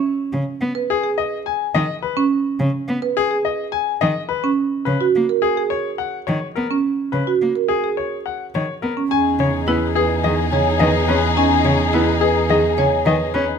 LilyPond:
<<
  \new Staff \with { instrumentName = "Grand piano" } { \time 4/4 \key b \major \tempo 4 = 106 r4. gis'16 r16 dis''16 r16 gis''16 r16 dis''16 r16 b'16 r16 | r4. gis'16 r16 dis''16 r16 gis''16 r16 dis''16 r16 b'16 r16 | r8 b'16 r8. gis'16 r16 cis''16 r16 fis''16 r16 cis''16 r16 ais'16 r16 | r8 b'16 r8. gis'16 r16 cis''16 r16 fis''16 r16 cis''16 r16 ais'16 r16 |
\key e \major gis''16 r16 cis''16 r16 b'16 r16 gis'16 r16 dis''16 r16 gis''16 r16 dis''16 r16 b'16 r16 | gis''16 r16 cis''16 r16 b'16 r16 gis'16 r16 dis''16 r16 gis''16 r16 dis''16 r16 b'16 r16 | }
  \new Staff \with { instrumentName = "Clarinet" } { \time 4/4 \key b \major r1 | r1 | r1 | r1 |
\key e \major gis'1~ | gis'2.~ gis'8. r16 | }
  \new Staff \with { instrumentName = "Marimba" } { \time 4/4 \key b \major r4 r16 b'16 r16 gis'16 r4. r16 cis'16 | r4 r16 b'16 r16 gis'16 r4. r16 cis'16 | r8. fis'16 r16 ais'16 r16 gis'16 r4. r16 cis'16 | r8. fis'16 r16 ais'16 r16 gis'16 r4. r16 cis'16 |
\key e \major cis'16 r8. e'16 r16 b'16 r16 gis'16 r16 cis''16 r16 b'16 r8. | cis'16 r8. e'16 r16 b'16 r16 gis'16 r16 cis''16 r16 b'16 r8. | }
  \new Staff \with { instrumentName = "String section" } { \time 4/4 \key b \major r1 | r1 | r1 | r1 |
\key e \major <dis' gis'>1~ | <dis' gis'>2.~ <dis' gis'>8. r16 | }
  \new Staff \with { instrumentName = "Cello" } { \clef bass \time 4/4 \key b \major r8 cis16 r16 b16 r4. r16 dis16 r8. | r8 cis16 r16 b16 r4. r16 dis16 r8. | r8 cis16 r16 ais16 r4. r16 dis16 r16 b16 r16 | r8 cis16 r16 ais16 r4. r16 dis16 r16 b16 r16 |
\key e \major r8 cis16 r16 b16 r8. dis16 r16 cis16 r16 dis16 r16 cis'16 r16 | r8 cis16 r16 b16 r8. dis16 r16 cis16 r16 dis16 r16 cis'16 r16 | }
  \new Staff \with { instrumentName = "Double bass" } { \clef bass \time 4/4 \key b \major r1 | r1 | r1 | r1 |
\key e \major e,1~ | e,1 | }
>>